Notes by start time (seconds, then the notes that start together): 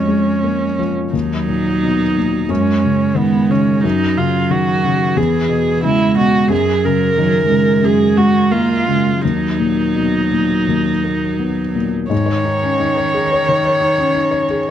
Already playing: F2 F3 G#3 C#4 F#4
0.08 G#3
0.44 A#3
0.79 F3
1.13 D#2 F#3 D#4
1.48 A#2
1.83 B2
2.17 A#2
2.49 F#2 G#3 C#4
2.84 C#3
3.15 D#3 G#3 B3
3.49 C#3 C#4
3.83 F#2 F#3 D#4
4.17 C#3 F4
4.50 D#3 F#4
4.84 C#3
5.16 E2 E3 G#4
5.49 B2
5.83 C#3 G#3 E4
6.16 B2 F#4
6.49 F#2 F#3 G#4
6.85 C#3 A#4
7.18 D#3 F#3
7.48 C#3 G#3
7.83 F#2 G#4
8.17 G#3 F#4
8.51 A#3 F4
8.86 C#3 G#3
9.22 D#2 F#3 D#4
9.59 A#2
9.95 B2
10.31 A#2
10.68 D#2
11.04 A#3
11.39 B3
11.75 A#2
12.10 G#2 D#3 C#5
12.26 C#5
12.45 D#4
12.63 C#4
12.80 D#4
12.97 C#5
13.14 G#4
13.32 C#5
13.49 D#3
13.64 C#5
13.81 D#4
13.98 C#4
14.15 D#4
14.31 C#5
14.50 G#4